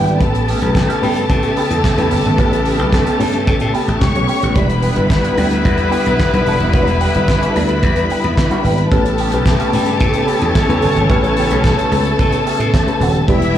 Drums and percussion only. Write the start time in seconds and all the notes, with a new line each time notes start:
0.08 closed hi-hat
0.21 kick, closed hi-hat
0.35 closed hi-hat
0.48 open hi-hat
0.62 closed hi-hat
0.75 kick, snare, clap, closed hi-hat
0.90 closed hi-hat
1.03 open hi-hat
1.16 closed hi-hat
1.30 kick, closed hi-hat
1.43 closed hi-hat
1.57 open hi-hat
1.71 closed hi-hat
1.84 kick, snare, clap, closed hi-hat
1.98 closed hi-hat
2.11 open hi-hat
2.25 closed hi-hat
2.38 kick, closed hi-hat
2.53 closed hi-hat
2.65 open hi-hat
2.79 closed hi-hat
2.92 kick, snare, clap, closed hi-hat
3.07 closed hi-hat
3.20 open hi-hat
3.33 closed hi-hat
3.47 kick, closed hi-hat
3.60 closed hi-hat
3.74 open hi-hat
3.88 closed hi-hat
4.01 kick, snare, clap, closed hi-hat
4.15 closed hi-hat
4.28 open hi-hat
4.42 closed hi-hat
4.56 kick, closed hi-hat
4.70 closed hi-hat
4.82 open hi-hat
4.96 closed hi-hat
5.10 kick, snare, clap, closed hi-hat
5.24 closed hi-hat
5.38 open hi-hat
5.51 closed hi-hat
5.65 kick, closed hi-hat
5.78 closed hi-hat
5.92 open hi-hat
6.06 closed hi-hat
6.20 kick, snare, clap, closed hi-hat
6.34 closed hi-hat
6.46 open hi-hat
6.60 closed hi-hat
6.73 kick, closed hi-hat
6.87 closed hi-hat
7.01 open hi-hat
7.15 closed hi-hat
7.28 kick, snare, clap, closed hi-hat
7.43 closed hi-hat
7.56 open hi-hat
7.69 closed hi-hat
7.83 kick, closed hi-hat
7.96 closed hi-hat
8.10 open hi-hat
8.24 closed hi-hat
8.37 kick, snare, clap, closed hi-hat
8.51 closed hi-hat
8.65 open hi-hat
8.78 closed hi-hat
8.92 kick, closed hi-hat
9.06 closed hi-hat
9.18 open hi-hat
9.32 closed hi-hat
9.46 kick, snare, clap, closed hi-hat
9.60 closed hi-hat
9.73 open hi-hat
9.86 closed hi-hat
10.00 kick, closed hi-hat
10.14 closed hi-hat
10.28 open hi-hat
10.42 closed hi-hat
10.55 kick, snare, clap, closed hi-hat
10.70 closed hi-hat
10.82 open hi-hat
10.97 closed hi-hat
11.10 kick, closed hi-hat
11.24 closed hi-hat
11.37 open hi-hat
11.50 closed hi-hat
11.64 kick, snare, clap, closed hi-hat
11.79 closed hi-hat
11.92 open hi-hat
12.05 closed hi-hat
12.19 kick, closed hi-hat
12.32 closed hi-hat
12.47 open hi-hat
12.60 closed hi-hat
12.74 kick, snare, clap, closed hi-hat
12.88 closed hi-hat
13.01 open hi-hat
13.15 closed hi-hat
13.28 kick, closed hi-hat
13.42 closed hi-hat